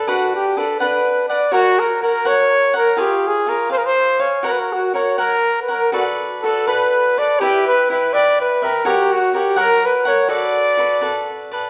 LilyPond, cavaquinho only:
\new Staff \with { instrumentName = "Cavaquinho" } { \time 6/8 \key b \minor \tempo 4. = 82 <d' b' d'' fis''>4 <d' b' d'' fis''>8 <d' b' d'' fis''>4 <b' d'' fis''>8 | <fis' ais' cis'' fis''>4 <fis' ais' cis'' fis''>8 <fis' ais' cis'' fis''>4 <ais' cis'' fis''>8 | <eis' gis' cis'' eis''>4 <eis' gis' cis'' eis''>8 <eis' gis' eis''>4 <gis' cis'' eis''>8 | <fis' ais' cis'' fis''>4 <fis' ais' cis'' fis''>8 <fis' ais' cis'' fis''>4 <ais' cis'' fis''>8 |
<fis' a' b' d''>4 <fis' a' b' d''>8 <fis' a' b' d''>4 <a' b' d''>8 | <e' g' b' e''>4 <e' g' b' e''>8 <e' g' b' e''>4 <g' b' e''>8 | <fis' ais' cis'' fis''>4 <fis' ais' cis'' fis''>8 <fis' ais' cis'' fis''>4 <ais' cis'' fis''>8 | <fis' a' b' d''>4 <fis' a' b' d''>8 <fis' a' b' d''>4 <a' b' d''>8 | }